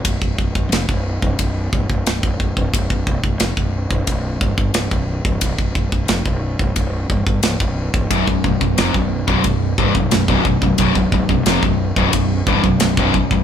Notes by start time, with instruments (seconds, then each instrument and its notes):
0.05 fingered electric bass B0, kick, ride bell
0.22 fingered electric bass B0, kick
0.38 fingered electric bass B0, kick
0.55 fingered electric bass B0, kick
0.72 fingered electric bass F1, snare, ride bell
0.89 fingered electric bass B0, kick
1.22 fingered electric bass B0, kick
1.39 fingered electric bass B0, kick, ride bell
1.73 fingered electric bass C1, kick
1.90 fingered electric bass B0, kick
2.06 fingered electric bass B0, snare, ride bell
2.23 fingered electric bass B0, kick
2.40 fingered electric bass B0, kick
2.57 fingered electric bass B0, kick
2.74 fingered electric bass B0, kick, ride bell
2.90 fingered electric bass B0, kick
3.07 fingered electric bass B0, kick
3.24 fingered electric bass B0, kick
3.40 fingered electric bass F1, snare, ride bell
3.57 fingered electric bass B0, kick
3.91 fingered electric bass B0, kick
4.07 fingered electric bass B0, kick, ride bell
4.41 fingered electric bass C1, kick
4.58 fingered electric bass G1, kick
4.74 fingered electric bass C1, snare, ride bell
4.91 fingered electric bass B0, kick
5.25 fingered electric bass C1, kick
5.41 fingered electric bass B0, kick, ride bell
5.58 fingered electric bass B0, kick
5.75 fingered electric bass B0, kick
5.92 fingered electric bass B0, kick
6.08 fingered electric bass F1, snare, ride bell
6.26 fingered electric bass B0, kick
6.59 fingered electric bass B0, kick
6.76 fingered electric bass B0, kick, ride bell
7.10 fingered electric bass C1, kick
7.26 fingered electric bass G1, kick
7.43 fingered electric bass C1, snare, ride bell
7.60 fingered electric bass B0, kick
7.94 fingered electric bass C1, kick
8.11 fingered electric bass B0, distorted electric guitar B1 F#2, kick, ride bell
8.27 fingered electric bass B0, distorted electric guitar B1 F#2, kick
8.44 fingered electric bass B0, distorted electric guitar B1 F#2, kick
8.61 fingered electric bass B0, distorted electric guitar B1 F#2, kick
8.78 fingered electric bass F1, distorted electric guitar F2 C3, snare, ride bell
8.94 fingered electric bass B0, distorted electric guitar B1 F#2, kick
9.27 fingered electric bass B0, distorted electric guitar B1 F#2, kick
9.44 fingered electric bass B0, distorted electric guitar B1 F#2, kick, ride bell
9.78 fingered electric bass C1, distorted electric guitar C2 G2, kick
9.95 fingered electric bass B0, distorted electric guitar B1 F#2, kick
10.11 fingered electric bass B0, distorted electric guitar B1 F#2, snare, ride bell
10.28 fingered electric bass B0, distorted electric guitar B1 F#2, kick
10.45 fingered electric bass B0, distorted electric guitar B1 F#2, kick
10.62 fingered electric bass B0, distorted electric guitar B1 F#2, kick
10.78 fingered electric bass B0, distorted electric guitar B1 F#2, kick, ride bell
10.95 fingered electric bass B0, distorted electric guitar B1 F#2, kick
11.12 fingered electric bass B0, distorted electric guitar B1 F#2, kick
11.29 fingered electric bass B0, distorted electric guitar B1 F#2, kick
11.46 fingered electric bass F1, distorted electric guitar F2 C3, snare, ride bell
11.63 fingered electric bass B0, distorted electric guitar B1 F#2, kick
11.96 fingered electric bass B0, distorted electric guitar B1 F#2, kick
12.13 fingered electric bass B0, distorted electric guitar B1 F#2, kick, ride bell
12.47 fingered electric bass C1, distorted electric guitar C2 G2, kick
12.64 fingered electric bass B0, distorted electric guitar B1 F#2, kick
12.80 fingered electric bass B0, distorted electric guitar B1 F#2, snare, ride bell
12.97 fingered electric bass B0, distorted electric guitar B1 F#2, kick
13.14 fingered electric bass B0, distorted electric guitar B1 F#2, kick
13.31 fingered electric bass B0, distorted electric guitar B1 F#2, kick